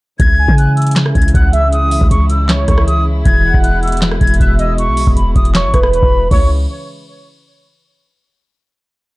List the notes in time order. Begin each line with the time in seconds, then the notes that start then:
0.20 C#2 C#3 E3 G#3 E4 G#6, kick, closed hi-hat
0.39 G#5
0.48 C#3, kick
0.58 F#6, closed hi-hat
0.77 E6, closed hi-hat
0.82 closed hi-hat
0.87 closed hi-hat
0.91 closed hi-hat
0.96 snare, clap, closed hi-hat
1.06 cross-stick
1.15 C#2 G#6, kick, closed hi-hat
1.22 closed hi-hat
1.28 closed hi-hat
1.34 C#2 F#5 F#6, kick, closed hi-hat
1.53 E5 E6, closed hi-hat
1.72 D#6, closed hi-hat
1.91 open hi-hat
2.01 C#2, kick
2.11 C#2 C#6, closed hi-hat
2.30 E6, closed hi-hat
2.49 C#5, snare, clap, closed hi-hat
2.68 C#2 C#6, kick, cross-stick, closed hi-hat
2.78 cross-stick
2.87 D#6, closed hi-hat
3.25 E1 B2 G#6, kick, closed hi-hat
3.45 F#5
3.54 E1, kick
3.63 F#6, closed hi-hat
3.83 E6, closed hi-hat
3.88 closed hi-hat
3.92 closed hi-hat
3.97 closed hi-hat
4.02 snare, clap, closed hi-hat
4.11 cross-stick
4.21 E1 G#6, kick, closed hi-hat
4.27 closed hi-hat
4.34 closed hi-hat
4.40 E1 E5 F#6, kick, closed hi-hat
4.59 D#5 E6, closed hi-hat
4.78 C#6, closed hi-hat
4.88 B1
4.97 open hi-hat
5.07 E1, kick
5.16 E1 B5, closed hi-hat
5.36 E1 D#6, kick, closed hi-hat
5.45 closed hi-hat
5.55 C#5 C#6, snare, clap, closed hi-hat
5.64 G#1
5.74 E1 B4, kick, cross-stick, closed hi-hat
5.83 B5, cross-stick
5.93 B5, closed hi-hat
6.03 E1, kick
6.31 C#2 C#3 E3 G#3 E4 C#5 C#6, kick, crash